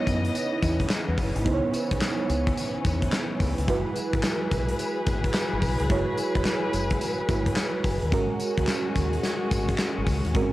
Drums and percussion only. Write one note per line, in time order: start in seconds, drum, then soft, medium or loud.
0.07 kick medium
0.07 closed hi-hat medium
0.07 tambourine medium
0.25 closed hi-hat medium
0.35 closed hi-hat medium
0.35 tambourine medium
0.63 kick loud
0.63 closed hi-hat medium
0.63 tambourine medium
0.80 kick medium
0.80 closed hi-hat medium
0.90 snare loud
0.90 clap loud
0.90 closed hi-hat loud
0.90 tambourine medium
1.18 kick medium
1.18 open hi-hat medium
1.18 tambourine medium
1.36 closed hi-hat medium
1.46 kick loud
1.46 closed hi-hat medium
1.74 closed hi-hat medium
1.74 tambourine medium
1.91 kick loud
1.91 closed hi-hat medium
2.01 snare loud
2.01 clap loud
2.01 closed hi-hat medium
2.01 tambourine loud
2.30 closed hi-hat medium
2.30 tambourine medium
2.47 kick medium
2.47 closed hi-hat medium
2.57 closed hi-hat medium
2.57 tambourine medium
2.85 kick loud
2.85 closed hi-hat medium
2.85 tambourine medium
3.02 kick medium
3.02 closed hi-hat medium
3.12 snare loud
3.12 clap loud
3.12 closed hi-hat medium
3.12 tambourine medium
3.40 kick medium
3.40 open hi-hat medium
3.40 tambourine medium
3.58 closed hi-hat medium
3.68 kick loud
3.68 closed hi-hat medium
3.96 closed hi-hat medium
3.96 tambourine medium
4.13 kick medium
4.13 closed hi-hat medium
4.23 snare loud
4.23 clap medium
4.23 closed hi-hat medium
4.23 tambourine loud
4.51 kick medium
4.51 closed hi-hat medium
4.51 tambourine medium
4.68 closed hi-hat medium
4.79 closed hi-hat medium
4.79 tambourine medium
5.07 kick loud
5.07 closed hi-hat medium
5.07 tambourine medium
5.24 kick medium
5.24 closed hi-hat medium
5.34 snare loud
5.34 clap loud
5.34 closed hi-hat medium
5.34 tambourine medium
5.62 kick loud
5.62 open hi-hat medium
5.62 tambourine medium
5.80 closed hi-hat medium
5.90 kick loud
5.90 closed hi-hat medium
6.17 closed hi-hat medium
6.17 tambourine medium
6.35 kick medium
6.35 closed hi-hat medium
6.45 snare loud
6.45 clap medium
6.45 closed hi-hat medium
6.45 tambourine loud
6.73 closed hi-hat medium
6.73 tambourine medium
6.90 kick loud
6.90 closed hi-hat medium
7.01 closed hi-hat medium
7.01 tambourine medium
7.29 kick loud
7.29 closed hi-hat medium
7.29 tambourine medium
7.46 kick medium
7.46 closed hi-hat medium
7.56 snare loud
7.56 clap loud
7.56 closed hi-hat medium
7.56 tambourine medium
7.84 kick loud
7.84 open hi-hat medium
7.84 tambourine medium
8.02 closed hi-hat medium
8.12 kick loud
8.12 closed hi-hat medium
8.40 closed hi-hat medium
8.40 tambourine medium
8.58 kick medium
8.58 closed hi-hat medium
8.67 snare loud
8.67 clap medium
8.67 closed hi-hat medium
8.67 tambourine loud
8.96 kick medium
8.96 closed hi-hat medium
8.96 tambourine medium
9.13 closed hi-hat medium
9.23 snare medium
9.23 closed hi-hat medium
9.23 tambourine medium
9.51 kick loud
9.51 closed hi-hat medium
9.51 tambourine medium
9.69 kick medium
9.69 closed hi-hat medium
9.78 snare loud
9.78 clap loud
9.78 closed hi-hat medium
9.78 tambourine medium
10.06 kick medium
10.06 open hi-hat medium
10.06 tambourine medium
10.25 closed hi-hat medium
10.35 kick loud
10.35 closed hi-hat medium